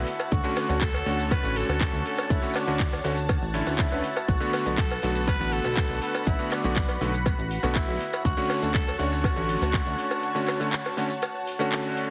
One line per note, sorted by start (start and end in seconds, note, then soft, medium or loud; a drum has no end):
0.00 0.34 E4 medium
0.00 4.24 F#4 medium
0.00 12.10 F#5 medium
0.07 4.25 C#5 medium
0.07 6.23 A5 loud
0.07 open hi-hat loud
0.19 closed hi-hat medium
0.19 cowbell medium
0.19 shaker medium
0.32 0.42 D2 loud
0.32 0.82 F#4 loud
0.32 kick loud
0.32 closed hi-hat medium
0.32 shaker medium
0.44 0.66 D3 loud
0.44 0.66 A3 medium
0.44 0.66 C#4 medium
0.44 0.66 F#4 loud
0.44 closed hi-hat soft
0.44 shaker soft
0.56 open hi-hat loud
0.56 cowbell medium
0.69 1.02 D2 medium
0.69 0.75 D3 medium
0.69 0.75 A3 medium
0.69 0.76 C#4 medium
0.69 0.76 F#4 medium
0.69 closed hi-hat medium
0.69 shaker medium
0.81 1.33 A4 loud
0.81 kick loud
0.81 clap loud
0.81 closed hi-hat medium
0.81 shaker medium
0.94 closed hi-hat soft
0.94 cowbell medium
0.94 shaker soft
1.06 1.40 D2 loud
1.06 1.40 D3 medium
1.06 1.41 A3 medium
1.06 1.41 C#4 medium
1.06 1.41 F#4 medium
1.06 open hi-hat loud
1.19 closed hi-hat soft
1.19 shaker medium
1.31 1.58 B4 loud
1.31 kick loud
1.31 closed hi-hat medium
1.31 cowbell medium
1.31 shaker medium
1.42 1.64 A1 medium
1.42 2.39 D3 medium
1.42 2.39 A3 medium
1.42 2.40 C#4 medium
1.42 2.40 F#4 medium
1.42 shaker soft
1.56 2.06 A4 loud
1.56 open hi-hat loud
1.69 1.88 D2 loud
1.69 closed hi-hat medium
1.69 cowbell medium
1.69 shaker medium
1.81 kick loud
1.81 clap loud
1.81 closed hi-hat medium
1.81 shaker medium
1.93 2.03 D2 loud
1.93 shaker soft
2.06 2.33 A4 loud
2.06 open hi-hat loud
2.18 closed hi-hat soft
2.18 cowbell medium
2.18 shaker medium
2.30 2.40 D2 loud
2.30 2.57 E4 loud
2.30 kick loud
2.30 closed hi-hat medium
2.30 shaker medium
2.42 2.64 D3 medium
2.42 2.64 A3 medium
2.42 2.64 C#4 medium
2.42 2.65 F#4 medium
2.42 closed hi-hat soft
2.42 shaker soft
2.55 3.05 D4 medium
2.55 clap soft
2.55 open hi-hat loud
2.55 cowbell medium
2.67 3.01 D2 medium
2.67 2.77 D3 medium
2.67 2.78 A3 medium
2.67 2.78 C#4 medium
2.67 2.78 F#4 loud
2.67 closed hi-hat medium
2.67 shaker medium
2.80 kick loud
2.80 clap loud
2.80 closed hi-hat medium
2.80 shaker medium
2.92 open hi-hat medium
2.92 cowbell medium
2.92 shaker soft
3.04 3.38 D2 loud
3.04 3.15 D3 medium
3.04 3.15 A3 medium
3.04 3.15 C#4 medium
3.04 3.15 F#4 medium
3.04 open hi-hat loud
3.17 closed hi-hat soft
3.17 shaker medium
3.29 kick loud
3.29 closed hi-hat medium
3.29 cowbell loud
3.29 shaker medium
3.42 3.62 A1 medium
3.42 shaker soft
3.54 3.88 D3 medium
3.54 3.88 A3 medium
3.54 3.89 C#4 medium
3.54 3.89 E4 medium
3.54 open hi-hat loud
3.67 3.87 D2 medium
3.67 closed hi-hat medium
3.67 cowbell medium
3.67 shaker medium
3.78 4.30 E4 medium
3.78 kick loud
3.78 clap loud
3.78 closed hi-hat medium
3.78 shaker medium
3.91 4.01 D2 medium
3.91 4.01 D3 medium
3.91 4.01 A3 medium
3.91 4.02 C#4 medium
3.91 4.02 B4 loud
3.91 shaker soft
4.04 open hi-hat loud
4.16 closed hi-hat soft
4.16 cowbell loud
4.16 shaker medium
4.28 4.39 B1 loud
4.28 4.77 F#4 loud
4.28 12.10 F#4 medium
4.28 7.96 B4 medium
4.28 kick loud
4.28 closed hi-hat medium
4.28 shaker medium
4.40 4.62 D3 loud
4.40 4.63 A3 medium
4.40 4.63 B3 medium
4.40 4.63 F#4 loud
4.40 closed hi-hat soft
4.40 shaker soft
4.53 open hi-hat loud
4.53 cowbell medium
4.66 4.99 B1 medium
4.66 4.72 D3 medium
4.66 4.72 A3 medium
4.66 4.72 B3 medium
4.66 4.72 F#4 medium
4.66 closed hi-hat medium
4.66 shaker medium
4.78 5.29 A4 loud
4.78 kick loud
4.78 clap loud
4.78 closed hi-hat medium
4.78 shaker medium
4.91 closed hi-hat soft
4.91 cowbell medium
4.91 shaker soft
5.03 5.36 B1 loud
5.03 5.37 D3 medium
5.03 5.37 A3 medium
5.03 5.37 B3 medium
5.03 5.38 F#4 medium
5.03 open hi-hat loud
5.15 closed hi-hat soft
5.15 shaker medium
5.27 5.54 B4 loud
5.27 kick loud
5.27 closed hi-hat medium
5.27 cowbell medium
5.27 shaker medium
5.39 5.60 A1 medium
5.39 6.36 D3 medium
5.39 6.36 A3 medium
5.39 6.36 B3 medium
5.39 6.37 F#4 medium
5.39 shaker soft
5.52 6.02 A4 loud
5.52 open hi-hat loud
5.64 5.85 B1 loud
5.64 closed hi-hat medium
5.64 cowbell medium
5.64 shaker medium
5.77 kick loud
5.77 clap loud
5.77 closed hi-hat medium
5.77 shaker medium
5.90 6.00 B1 medium
5.90 shaker soft
6.02 6.29 A4 loud
6.02 open hi-hat loud
6.14 closed hi-hat medium
6.14 cowbell medium
6.14 shaker medium
6.27 6.37 B1 loud
6.27 6.54 E4 loud
6.27 7.99 B5 medium
6.27 kick loud
6.27 closed hi-hat medium
6.27 shaker medium
6.39 6.61 D3 medium
6.39 6.61 A3 medium
6.39 6.61 B3 medium
6.39 6.61 F#4 medium
6.39 closed hi-hat soft
6.39 shaker soft
6.51 7.02 D4 medium
6.51 clap soft
6.51 open hi-hat loud
6.51 cowbell medium
6.64 6.97 B1 medium
6.64 6.74 D3 medium
6.64 6.74 A3 medium
6.64 6.75 B3 medium
6.64 6.75 F#4 medium
6.64 closed hi-hat medium
6.64 shaker medium
6.76 kick loud
6.76 clap loud
6.76 closed hi-hat medium
6.76 shaker medium
6.89 open hi-hat medium
6.89 cowbell medium
6.89 shaker soft
7.01 7.35 B1 loud
7.01 7.11 D3 medium
7.01 7.12 A3 medium
7.01 7.12 B3 medium
7.01 7.12 F#4 medium
7.01 open hi-hat loud
7.14 closed hi-hat soft
7.14 shaker medium
7.26 kick loud
7.26 closed hi-hat medium
7.26 cowbell medium
7.26 shaker medium
7.39 7.58 A1 medium
7.39 shaker soft
7.51 open hi-hat loud
7.63 7.83 B1 loud
7.63 7.99 D3 medium
7.63 7.99 A3 medium
7.63 7.99 B3 medium
7.63 7.99 F#4 loud
7.63 closed hi-hat medium
7.63 cowbell medium
7.63 shaker medium
7.75 8.21 E4 loud
7.75 kick loud
7.75 clap loud
7.75 closed hi-hat medium
7.75 shaker medium
7.88 7.98 B1 medium
7.88 shaker soft
8.00 12.10 C#5 medium
8.00 12.10 A5 medium
8.00 open hi-hat loud
8.13 closed hi-hat medium
8.13 cowbell medium
8.13 shaker medium
8.25 8.35 D2 loud
8.25 8.71 F#4 loud
8.25 kick loud
8.25 closed hi-hat medium
8.25 shaker medium
8.37 8.59 D3 loud
8.37 8.59 A3 medium
8.37 8.59 C#4 medium
8.37 8.60 F#4 loud
8.37 closed hi-hat soft
8.37 shaker soft
8.50 open hi-hat loud
8.50 cowbell medium
8.62 8.96 D2 medium
8.62 8.69 D3 medium
8.62 8.69 A3 medium
8.62 8.69 C#4 medium
8.62 8.69 F#4 medium
8.62 closed hi-hat medium
8.62 shaker medium
8.74 8.97 A4 loud
8.74 kick loud
8.74 clap loud
8.74 closed hi-hat medium
8.74 shaker medium
8.87 closed hi-hat soft
8.87 cowbell medium
8.87 shaker soft
8.98 9.33 D2 loud
8.98 9.34 D3 medium
8.98 9.34 A3 medium
8.98 9.34 C#4 medium
8.98 11.68 F#4 loud
8.98 9.34 F#4 medium
8.98 open hi-hat loud
9.12 closed hi-hat medium
9.12 shaker medium
9.24 kick loud
9.24 closed hi-hat medium
9.24 cowbell loud
9.24 shaker medium
9.36 9.57 A1 loud
9.36 10.32 D3 medium
9.36 10.33 A3 medium
9.36 10.33 C#4 medium
9.36 10.33 F#4 medium
9.36 shaker soft
9.49 open hi-hat loud
9.62 9.82 D2 medium
9.62 closed hi-hat medium
9.62 cowbell medium
9.62 shaker medium
9.74 kick loud
9.74 clap loud
9.74 closed hi-hat medium
9.74 shaker medium
9.87 9.96 D2 loud
9.87 shaker soft
9.99 open hi-hat loud
10.11 closed hi-hat medium
10.11 cowbell medium
10.11 shaker medium
10.23 closed hi-hat medium
10.23 shaker medium
10.35 10.57 D3 medium
10.35 10.57 A3 medium
10.35 10.58 C#4 medium
10.35 10.58 F#4 medium
10.35 closed hi-hat soft
10.35 shaker soft
10.48 clap soft
10.48 open hi-hat loud
10.48 cowbell medium
10.60 10.70 D3 medium
10.60 10.71 A3 medium
10.60 10.71 C#4 medium
10.60 10.71 F#4 loud
10.60 closed hi-hat medium
10.60 shaker medium
10.73 clap loud
10.73 closed hi-hat medium
10.73 shaker medium
10.86 open hi-hat medium
10.86 cowbell medium
10.86 shaker soft
10.97 11.08 D3 medium
10.97 11.08 A3 medium
10.97 11.08 C#4 medium
10.97 11.08 F#4 medium
10.97 open hi-hat loud
11.10 closed hi-hat medium
11.10 shaker medium
11.22 closed hi-hat medium
11.22 cowbell loud
11.22 shaker medium
11.36 shaker soft
11.47 open hi-hat loud
11.59 12.10 D3 medium
11.59 12.10 A3 medium
11.59 12.10 C#4 medium
11.59 12.10 F#4 loud
11.59 closed hi-hat medium
11.59 cowbell medium
11.59 shaker medium
11.72 clap loud
11.72 closed hi-hat medium
11.72 shaker medium
11.85 shaker soft
11.97 open hi-hat loud